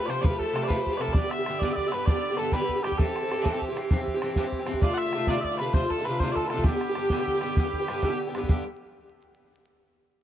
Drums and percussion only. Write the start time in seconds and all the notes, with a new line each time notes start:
0.10 bodhran
0.24 bodhran
0.40 bodhran
0.56 bodhran
0.70 bodhran
0.87 bodhran
1.01 bodhran
1.08 bodhran
1.14 bodhran
1.31 bodhran
1.46 bodhran
1.61 bodhran
1.77 bodhran
1.92 bodhran
2.07 bodhran
2.52 bodhran
2.69 bodhran
2.84 bodhran
2.92 bodhran
2.99 bodhran
3.16 bodhran
3.31 bodhran
3.46 bodhran
3.62 bodhran
3.77 bodhran
3.91 bodhran
4.08 bodhran
4.22 bodhran
4.36 bodhran
4.52 bodhran
4.67 bodhran
4.74 bodhran
4.82 bodhran
4.97 bodhran
5.13 bodhran
5.27 bodhran
5.44 bodhran
5.59 bodhran
5.74 bodhran
5.90 bodhran
6.05 bodhran
6.20 bodhran
6.36 bodhran
6.50 bodhran
6.58 bodhran
6.64 bodhran
6.81 bodhran
6.95 bodhran
7.10 bodhran
7.27 bodhran
7.41 bodhran
7.57 bodhran
7.73 bodhran
7.88 bodhran
8.03 bodhran
8.35 bodhran
8.43 bodhran
8.49 bodhran